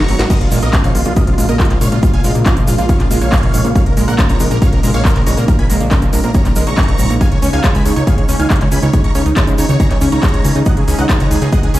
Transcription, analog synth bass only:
0.09 G#1
0.19 G#1
0.41 A#1
0.52 A#1
0.63 A#1
0.84 A#1
0.95 A#1
1.06 A#1
1.27 A#1
1.38 A#1
1.49 A#1
1.70 A#1
1.81 A#1
1.92 A#1
2.14 A#1
2.24 A#1
2.35 A#1
2.57 A#1
2.68 A#1
2.78 A#1
3.00 A#1
3.11 A#1
3.21 A#1
3.43 A#1
3.54 A#1
3.65 A#1
3.86 A#1
3.97 A#1
4.08 A#1
4.29 A#1
4.40 A#1
4.51 A#1
4.73 A#1
4.83 A#1
4.94 A#1
5.16 A#1
5.27 A#1
5.37 A#1
5.59 A#1
5.70 A#1
5.81 A#1
6.02 A#1
6.13 A#1
6.24 A#1
6.45 A#1
6.56 A#1
6.67 A#1
6.89 A#1
6.99 A#1
7.10 A#1
7.32 C#2
7.42 C#2
7.53 C#2
7.75 C#2
7.86 C#2
7.96 C#2
8.18 C#2
8.29 C#2
8.40 C#2
8.61 C#2
8.72 C#2
8.83 C#2
9.04 C#2
9.15 C#2
9.26 C#2
9.48 C#2
9.58 C#2
9.69 C#2
9.91 C#2
10.01 C#2
10.12 C#2
10.34 C#2
10.45 C#2
10.55 C#2
10.77 C#2
10.88 C#2
10.99 C#2
11.20 C#2
11.31 C#2
11.42 C#2
11.63 C#2
11.74 C#2

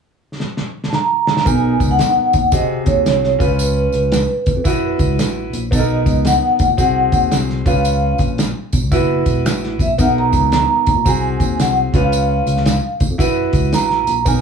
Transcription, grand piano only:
1.45 B3 D#4 A#4
2.52 C3 F#4 G#4
3.39 C#4 F4 B4
4.64 E4 F#4 B4
5.71 B3 D#4 A4
5.78 A#4
6.77 C4 F#4 G#4
7.65 C#4 F4 B4
8.91 E4 F#4 B4
9.98 B3 D#4 A#4
11.05 C4 F#4 G#4
11.94 C#4 F4 B4
13.18 E4 F#4 B4
14.25 B3 D#4 A#4

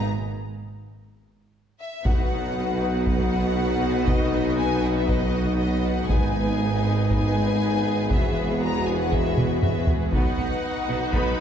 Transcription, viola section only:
2.05 B3 D#4
6.10 B3 D#4
8.12 F#4
10.14 B3 D#4
10.39 B3
10.89 B3
11.15 B3

